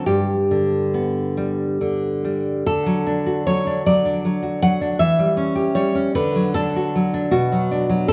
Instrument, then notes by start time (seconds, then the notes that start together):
nylon-string guitar
0.06 G2 G4
0.51 D3
0.94 B3
1.37 G3
1.81 D3
2.25 G3
2.67 D3 A4
2.86 F#3
3.07 D4
3.27 F#4
3.47 F#3 C#5
3.67 D4
3.86 F#3 D5
4.05 D4
4.25 F#3
4.43 F#4
4.62 F#3 F#5
4.81 D4
4.99 E3 E5
5.19 G3
5.37 C#4
5.55 G4
5.75 G3 C#5
5.95 C#4
6.15 D3 B4
6.36 F#3
6.54 D4 A4
6.76 F#4
6.96 F#3
7.14 D4
7.31 B2 F#4
7.52 F#3
7.71 D4
7.90 F#3
8.08 B3 A4